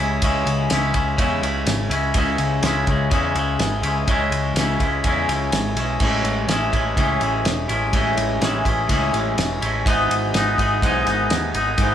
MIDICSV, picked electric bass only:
0, 0, Header, 1, 2, 480
1, 0, Start_track
1, 0, Tempo, 481928
1, 224, Time_signature, 4, 2, 24, 8
1, 11898, End_track
2, 0, Start_track
2, 0, Title_t, "Picked electric bass"
2, 0, Program_c, 0, 34
2, 0, Note_on_c, 0, 37, 87
2, 188, Note_off_c, 0, 37, 0
2, 221, Note_on_c, 0, 37, 91
2, 431, Note_off_c, 0, 37, 0
2, 455, Note_on_c, 0, 37, 87
2, 668, Note_off_c, 0, 37, 0
2, 706, Note_on_c, 0, 37, 85
2, 914, Note_off_c, 0, 37, 0
2, 936, Note_on_c, 0, 37, 94
2, 1149, Note_off_c, 0, 37, 0
2, 1174, Note_on_c, 0, 40, 92
2, 1387, Note_off_c, 0, 40, 0
2, 1418, Note_on_c, 0, 37, 77
2, 1629, Note_off_c, 0, 37, 0
2, 1653, Note_on_c, 0, 32, 94
2, 1866, Note_off_c, 0, 32, 0
2, 1888, Note_on_c, 0, 37, 96
2, 2104, Note_off_c, 0, 37, 0
2, 2141, Note_on_c, 0, 37, 102
2, 2351, Note_off_c, 0, 37, 0
2, 2375, Note_on_c, 0, 37, 86
2, 2588, Note_off_c, 0, 37, 0
2, 2613, Note_on_c, 0, 37, 97
2, 2826, Note_off_c, 0, 37, 0
2, 2863, Note_on_c, 0, 37, 96
2, 3072, Note_off_c, 0, 37, 0
2, 3098, Note_on_c, 0, 40, 100
2, 3309, Note_off_c, 0, 40, 0
2, 3337, Note_on_c, 0, 37, 88
2, 3549, Note_off_c, 0, 37, 0
2, 3574, Note_on_c, 0, 32, 92
2, 3787, Note_off_c, 0, 32, 0
2, 3805, Note_on_c, 0, 37, 100
2, 4022, Note_off_c, 0, 37, 0
2, 4057, Note_on_c, 0, 37, 95
2, 4268, Note_off_c, 0, 37, 0
2, 4288, Note_on_c, 0, 37, 92
2, 4503, Note_off_c, 0, 37, 0
2, 4524, Note_on_c, 0, 37, 87
2, 4741, Note_off_c, 0, 37, 0
2, 4774, Note_on_c, 0, 37, 85
2, 4987, Note_off_c, 0, 37, 0
2, 5020, Note_on_c, 0, 40, 93
2, 5230, Note_off_c, 0, 40, 0
2, 5257, Note_on_c, 0, 37, 82
2, 5469, Note_off_c, 0, 37, 0
2, 5501, Note_on_c, 0, 32, 96
2, 5711, Note_off_c, 0, 32, 0
2, 5732, Note_on_c, 0, 35, 88
2, 5946, Note_off_c, 0, 35, 0
2, 5976, Note_on_c, 0, 33, 98
2, 6188, Note_off_c, 0, 33, 0
2, 6211, Note_on_c, 0, 33, 83
2, 6425, Note_off_c, 0, 33, 0
2, 6449, Note_on_c, 0, 33, 85
2, 6664, Note_off_c, 0, 33, 0
2, 6700, Note_on_c, 0, 33, 96
2, 6910, Note_off_c, 0, 33, 0
2, 6935, Note_on_c, 0, 37, 92
2, 7147, Note_off_c, 0, 37, 0
2, 7180, Note_on_c, 0, 33, 83
2, 7390, Note_off_c, 0, 33, 0
2, 7419, Note_on_c, 0, 28, 93
2, 7629, Note_off_c, 0, 28, 0
2, 7659, Note_on_c, 0, 33, 100
2, 7869, Note_off_c, 0, 33, 0
2, 7900, Note_on_c, 0, 33, 96
2, 8109, Note_off_c, 0, 33, 0
2, 8134, Note_on_c, 0, 33, 96
2, 8346, Note_off_c, 0, 33, 0
2, 8374, Note_on_c, 0, 33, 86
2, 8586, Note_off_c, 0, 33, 0
2, 8616, Note_on_c, 0, 33, 97
2, 8827, Note_off_c, 0, 33, 0
2, 8853, Note_on_c, 0, 37, 89
2, 9065, Note_off_c, 0, 37, 0
2, 9095, Note_on_c, 0, 33, 83
2, 9306, Note_off_c, 0, 33, 0
2, 9339, Note_on_c, 0, 28, 93
2, 9548, Note_off_c, 0, 28, 0
2, 9576, Note_on_c, 0, 33, 97
2, 9787, Note_off_c, 0, 33, 0
2, 9822, Note_on_c, 0, 32, 108
2, 10030, Note_off_c, 0, 32, 0
2, 10057, Note_on_c, 0, 32, 84
2, 10267, Note_off_c, 0, 32, 0
2, 10301, Note_on_c, 0, 32, 89
2, 10509, Note_off_c, 0, 32, 0
2, 10537, Note_on_c, 0, 32, 87
2, 10747, Note_off_c, 0, 32, 0
2, 10781, Note_on_c, 0, 35, 93
2, 10989, Note_off_c, 0, 35, 0
2, 11019, Note_on_c, 0, 32, 85
2, 11228, Note_off_c, 0, 32, 0
2, 11262, Note_on_c, 0, 39, 92
2, 11470, Note_off_c, 0, 39, 0
2, 11497, Note_on_c, 0, 32, 96
2, 11707, Note_off_c, 0, 32, 0
2, 11730, Note_on_c, 0, 32, 106
2, 11898, Note_off_c, 0, 32, 0
2, 11898, End_track
0, 0, End_of_file